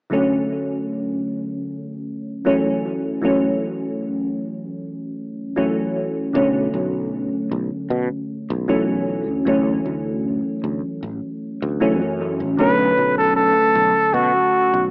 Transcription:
0.10 2.40 D3 medium
0.10 2.41 F#3 medium
0.10 2.41 A3 medium
0.10 2.42 C#4 loud
2.45 3.19 E3 medium
2.45 3.19 F#3 medium
2.45 3.19 A3 medium
2.45 3.20 C#4 loud
3.21 5.52 E3 medium
3.21 5.52 F#3 medium
3.21 5.53 A3 medium
3.21 5.53 C#4 loud
5.56 6.30 E3 medium
5.56 6.30 F#3 medium
5.56 6.31 A3 medium
5.56 6.31 C#4 loud
6.33 6.68 B1 loud
6.33 8.64 D3 medium
6.33 8.64 F#3 medium
6.33 8.65 A3 medium
6.33 8.65 C#4 loud
6.74 7.28 B1 medium
7.52 7.69 B1 medium
7.90 8.08 B2 loud
8.50 9.28 B1 loud
8.68 9.42 E3 medium
8.68 9.42 F#3 medium
8.68 9.42 A3 medium
8.68 9.43 C#4 loud
9.28 9.44 D2 medium
9.45 9.79 D2 loud
9.45 11.75 E3 medium
9.45 11.76 F#3 medium
9.45 11.76 A3 medium
9.45 11.77 C#4 loud
9.86 10.39 D2 medium
10.64 10.81 D2 medium
11.03 11.20 A1 medium
11.62 12.01 D2 loud
11.80 12.54 E3 loud
11.80 12.54 F#3 medium
11.80 12.54 A3 medium
11.80 12.55 C#4 loud
12.01 12.42 F#2 loud
12.40 12.55 A1 medium
12.57 12.91 B1 medium
12.57 14.87 D3 medium
12.57 14.88 F#3 medium
12.57 14.88 A3 medium
12.57 14.89 C#4 loud
12.57 13.14 B4 loud
12.98 13.51 B1 medium
13.18 13.35 A4 loud
13.36 14.15 A4 loud
13.75 13.92 B1 medium
14.14 14.31 B2 medium
14.14 14.90 F#4 loud
14.74 14.91 B1 medium

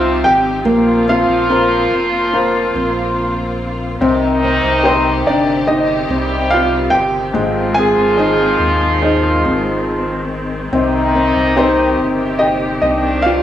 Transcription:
0.00 0.24 C2 loud
0.00 0.23 C3 medium
0.00 0.61 C3 medium
0.00 0.65 C3 medium
0.00 0.22 C4 medium
0.00 0.68 C4 medium
0.00 1.07 C4 medium
0.00 3.96 C4 medium
0.00 0.61 D#4 medium
0.00 0.68 D#4 soft
0.00 0.74 D#4 medium
0.00 0.22 F4 medium
0.00 0.61 G4 medium
0.00 0.68 G4 medium
0.00 0.75 G4 medium
0.00 0.25 F5 loud
0.23 0.62 G#1 loud
0.23 1.05 G4 medium
0.23 1.10 G5 loud
0.64 1.24 A#1 loud
0.64 3.55 F3 medium
0.64 4.01 A#3 medium
0.64 3.97 A#3 medium
0.64 3.98 A#3 medium
0.64 3.54 F4 loud
0.64 3.98 F4 medium
1.08 1.49 C4 medium
1.08 3.57 F4 medium
1.08 3.56 F5 loud
1.28 1.87 A#1 loud
1.49 2.75 C4 medium
1.49 2.31 F4 medium
1.49 2.32 F4 medium
1.49 2.31 A#4 medium
1.49 4.10 A#4 medium
1.49 2.31 C5 medium
1.91 2.71 F1 loud
2.33 4.09 F4 medium
2.33 3.15 F4 medium
2.33 3.15 A#4 medium
2.33 3.15 C5 medium
2.75 3.97 A#1 loud
2.75 4.44 C4 medium
4.00 4.59 C2 loud
4.00 7.35 C3 medium
4.00 7.31 C3 medium
4.00 5.65 D#3 medium
4.00 13.43 D#3 medium
4.00 7.30 C4 medium
4.00 13.43 C4 medium
4.00 5.65 D#4 loud
4.00 7.32 G4 medium
4.44 4.85 C4 medium
4.63 5.22 C2 loud
4.83 6.10 C4 medium
4.83 5.65 G4 medium
4.83 7.44 G4 medium
4.83 5.65 C5 medium
4.83 5.28 C5 medium
4.83 5.65 G5 medium
4.87 5.25 C4 medium
5.26 6.05 G1 loud
5.26 5.65 D5 medium
5.30 5.67 D4 medium
5.67 8.18 D#4 medium
5.67 6.48 G4 medium
5.67 6.48 C5 medium
5.67 6.54 D#5 loud
5.67 6.49 D#5 medium
5.71 6.49 D#4 medium
6.09 6.88 C2 medium
6.09 6.91 G3 medium
6.09 7.76 C4 medium
6.09 6.91 G4 medium
6.51 6.91 F4 medium
6.51 6.89 F5 loud
6.90 7.31 G1 loud
6.90 7.78 G5 loud
6.95 7.73 G4 medium
7.34 7.93 G#1 loud
7.34 10.72 G#2 medium
7.34 10.25 F3 medium
7.34 10.67 G#3 medium
7.34 10.68 G#3 medium
7.34 10.25 F4 loud
7.75 8.18 C4 medium
7.75 10.24 G#5 loud
7.79 10.27 G#4 medium
7.97 8.56 G#1 loud
8.16 9.44 C4 medium
8.16 9.02 D#4 medium
8.16 8.99 G#4 medium
8.16 10.81 G#4 medium
8.16 8.99 C5 soft
8.16 8.99 D#5 medium
8.59 9.45 D#2 medium
9.02 11.57 D#4 medium
9.02 9.84 G#4 medium
9.02 9.84 C5 soft
9.02 9.84 D#5 medium
9.44 10.68 G#1 loud
9.44 11.15 C4 medium
10.72 11.32 C2 loud
10.72 13.43 C3 medium
10.72 12.38 D#3 medium
10.72 13.43 C4 medium
10.72 12.38 D#4 medium
10.72 13.43 G4 medium
11.15 11.56 C4 medium
11.36 11.95 C2 medium
11.56 12.82 C4 medium
11.56 12.38 C4 medium
11.56 12.41 D#4 medium
11.56 12.38 G4 medium
11.56 13.43 G4 medium
11.56 12.43 C5 medium
11.56 12.38 C5 soft
11.56 12.38 D#5 medium
11.99 12.79 G1 loud
12.39 12.80 D#4 medium
12.39 13.21 G4 medium
12.39 13.21 C5 soft
12.39 12.79 D#5 medium
12.39 13.22 G5 medium
12.82 13.43 C2 loud
12.82 13.43 D#3 medium
12.82 13.43 C4 medium
12.82 13.43 D4 medium
12.82 13.23 D#4 medium
12.82 13.25 D#5 medium
13.22 13.43 F4 medium
13.22 13.43 F5 loud

